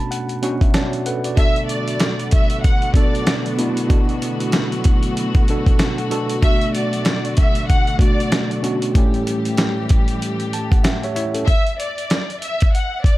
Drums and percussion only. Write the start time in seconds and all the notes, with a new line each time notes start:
0.12 closed hi-hat
0.29 closed hi-hat
0.43 closed hi-hat
0.61 kick, closed hi-hat
0.74 snare, closed hi-hat
0.93 closed hi-hat
1.06 closed hi-hat
1.24 closed hi-hat
1.37 kick, closed hi-hat
1.56 closed hi-hat
1.69 closed hi-hat
1.88 closed hi-hat
2.00 snare, closed hi-hat
2.20 closed hi-hat
2.31 kick, closed hi-hat
2.50 closed hi-hat
2.64 kick, closed hi-hat
2.82 closed hi-hat
2.94 kick, closed hi-hat
3.15 closed hi-hat
3.27 snare, closed hi-hat
3.46 closed hi-hat
3.59 closed hi-hat
3.77 closed hi-hat
3.90 kick, closed hi-hat
4.09 closed hi-hat
4.22 closed hi-hat
4.40 closed hi-hat
4.52 snare, closed hi-hat
4.72 closed hi-hat
4.84 kick, closed hi-hat
5.03 closed hi-hat
5.17 closed hi-hat
5.35 kick, closed hi-hat
5.48 closed hi-hat
5.67 kick, closed hi-hat
5.79 snare, closed hi-hat
5.98 closed hi-hat
6.11 closed hi-hat
6.29 closed hi-hat
6.42 kick, closed hi-hat
6.61 closed hi-hat
6.75 closed hi-hat
6.93 closed hi-hat
7.05 snare, closed hi-hat
7.25 closed hi-hat
7.37 kick, closed hi-hat
7.55 closed hi-hat
7.70 kick, closed hi-hat
7.87 closed hi-hat
7.99 kick, closed hi-hat
8.20 closed hi-hat
8.32 snare, closed hi-hat
8.51 closed hi-hat
8.64 closed hi-hat
8.82 closed hi-hat
8.95 kick, closed hi-hat
9.14 closed hi-hat
9.27 closed hi-hat
9.45 closed hi-hat
9.57 snare, closed hi-hat
9.89 kick, closed hi-hat
10.08 closed hi-hat
10.22 closed hi-hat
10.40 closed hi-hat
10.53 closed hi-hat
10.72 kick, closed hi-hat
10.84 snare, closed hi-hat
11.04 closed hi-hat
11.16 closed hi-hat
11.35 closed hi-hat
11.48 kick, closed hi-hat
11.67 closed hi-hat
11.80 closed hi-hat
11.98 closed hi-hat
12.10 snare, closed hi-hat
12.30 closed hi-hat
12.42 closed hi-hat
12.60 kick, closed hi-hat
12.75 closed hi-hat
13.04 kick, closed hi-hat